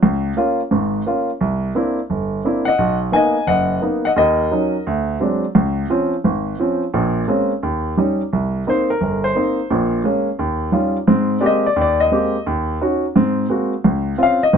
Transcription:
0.03 C#2
0.37 A#3 C#4 F4
0.71 G#1 G#2
1.06 A#3 C#4 F4
1.41 C2
1.75 A#3 C4 D4 E4
2.10 G1
2.45 A#3 C4 D4 E4
2.65 D#5 F#5
2.78 B1
3.12 A#3 B3 D#4 D#5 G#5
3.47 F#1 D#5 F#5
3.82 A#3 B3 D#4
4.05 D#5 F#5
4.16 D#2 A#4 D#5
4.51 F#3 C#4 D#4
4.87 D2
5.20 F#3 G#3 C4 D4
5.55 C#2
5.90 F3 C4 C#4
6.24 G#1
6.60 F3 C4 C#4
6.94 A#1 A#2
7.28 G#3 A#3 C4 C#4
7.63 D#2
7.97 G3 C#4 D#4
8.33 C2
8.67 A#3 C4 D#4 C5
8.90 A#4
9.01 G1 A#4
9.24 C5
9.35 A#3 C4 D#4
9.71 A#1 A#2
10.04 G#3 A#3 C#4
10.39 D#2
10.72 G3 C#4 D#4 F4
11.07 G#2 C4
11.41 G#3 A#3 C4 G4 D5
11.46 D#5
11.66 D5
11.76 D#2
11.81 D5
12.00 D#5
12.11 G#3 A#3 C4 G4
12.46 D#2
12.81 C#4 D#4 F#4
13.16 G#2 C4
13.49 G#3 A#3 C4 F#4
13.84 C#2
14.18 C4 C#4 F4
14.23 F5
14.43 D#5
14.53 G#1 C3

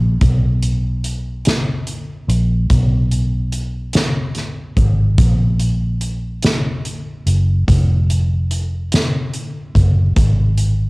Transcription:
Already playing: A#1
0.21 B1, kick, closed hi-hat
0.63 closed hi-hat
1.04 closed hi-hat
1.45 snare, closed hi-hat
1.87 closed hi-hat
2.28 A#1, closed hi-hat
2.70 B1, kick, closed hi-hat
3.11 closed hi-hat
3.52 closed hi-hat
3.93 snare, closed hi-hat
4.35 snare, closed hi-hat
4.76 G#1, kick, closed hi-hat
5.18 A#1, kick, closed hi-hat
5.60 closed hi-hat
6.01 closed hi-hat
6.43 snare, closed hi-hat
6.85 closed hi-hat
7.26 F#1, closed hi-hat
7.68 F1, kick, closed hi-hat
8.10 closed hi-hat
8.51 closed hi-hat
8.92 snare, closed hi-hat
9.34 closed hi-hat
9.75 F#1, kick, closed hi-hat
10.16 G#1, kick, closed hi-hat
10.58 closed hi-hat

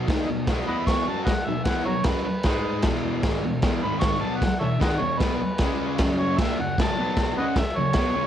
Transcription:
0.08 D#3 A#3 D#4, kick, snare, crash
0.28 B2 F#3
0.47 B2 F#3 B3, kick, snare, crash
0.67 E3 B3 E4 D#5 F#5 B5
0.87 C#6, kick, snare, crash
1.07 F#3 C#4 F#4 A5
1.25 B4 D#5 F#5, muted distorted electric guitar stroke, kick, snare, crash
1.47 B2 F#3 E5
1.64 E3 B3 E4 F#5, kick, snare, crash
1.85 B2 F#3 F#4 A#4 C#5
2.04 F#3 C#4 F#4 B4, kick, snare, crash
2.27 muted distorted electric guitar stroke
2.43 G#3 D#4 G#4, kick, snare, crash
2.82 E2, kick, snare, crash
2.87 B2 E3
3.23 G#2 D#3 G#3, kick, snare, crash
3.45 E2 B2
3.62 E2 B2 E3, kick, snare, crash
3.83 G#2 D#3 G#3 B5
4.00 C#6, kick, snare, crash
4.20 B2 F#3 B3 A5
4.37 F#5
4.42 muted distorted electric guitar stroke, kick, snare, crash
4.59 E2 B2 A4 C#5 E5
4.80 G#2 D#3 G#3 B4 D#5 F#5, kick, snare, crash
5.00 E2 B2 C#5
5.18 B2 F#3 B3 B4, kick, snare, crash
5.41 muted distorted electric guitar stroke
5.58 C#3, kick, snare, crash
5.62 G#3 C#4
5.98 F#2 C#3 F#3, kick, snare, crash
6.18 C#5
6.38 A#2 F3 A#3 E5, kick, snare, crash
6.59 F#2 C#3 F#5
6.78 F#2 C#3 F#3 A5, kick, snare, crash
6.99 B2 F#3 B3
7.17 kick, snare, crash
7.38 C#3 G#3 C#4 B4 D#5 F#5
7.56 E5, muted distorted electric guitar stroke, kick, snare, crash
7.77 F#2 C#3 C#5
7.93 B2, kick, snare, crash
7.97 F#3 B3
8.15 C#3 G#3 C#4

